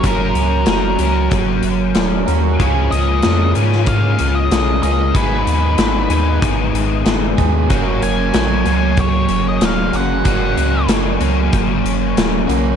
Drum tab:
HH |x-x-x-x-x-x-x-x-|x-x-x-x-x-x-x-x-|x-x-x-x-x-x-x-x-|x-x-x-x-x-x-x-x-|
SD |----o-------o---|----o--o----o---|----o-------o---|----o-------o---|
BD |o-------o-------|o-------o-------|o-------o-----o-|o-------o-------|

HH |x-x-x-x-x-x-x-x-|
SD |----o-------o---|
BD |o-------o-------|